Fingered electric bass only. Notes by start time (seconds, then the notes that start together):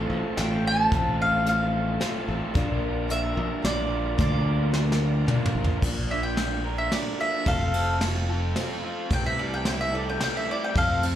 0.10 A1
0.38 A1
0.92 A1
2.28 A1
2.55 A#1
3.37 A#1
3.64 A#1
4.19 D2
5.55 A#1
5.82 A#1
7.47 F1
9.11 C2
10.75 F2